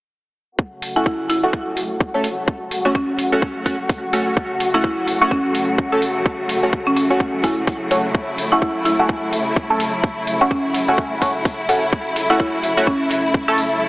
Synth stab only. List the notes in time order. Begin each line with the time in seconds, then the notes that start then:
0.96 A3 C#4 F#4
1.43 A3 C#4 F#4
2.14 A3 C#4 A4
2.85 A3 C#4 F#4
3.32 A3 C#4 F#4
3.66 A3 C#4 F#4
4.13 A3 C#4 F#4
4.74 A3 C#4 F#4
5.21 A3 C#4 F#4
5.92 A3 C#4 A4
6.63 A3 C#4 F#4
7.10 A3 C#4 F#4
7.44 A3 C#4 F#4
7.91 A3 C#4 F#4
8.52 A3 C#4 F#4
8.99 A3 C#4 F#4
9.70 A3 C#4 A4
10.41 A3 C#4 F#4
10.88 A3 C#4 F#4
11.22 A3 C#4 F#4
11.69 A3 C#4 F#4
12.30 A3 C#4 F#4
12.77 A3 C#4 F#4
13.48 A3 C#4 A4